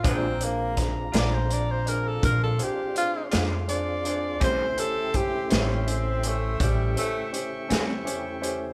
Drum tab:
HH |xxxxxxxxxxxx|xxxxxxxxxxxx|
SD |--oo-----o--|---o-----o--|
BD |o-o---o-----|o-o---o-----|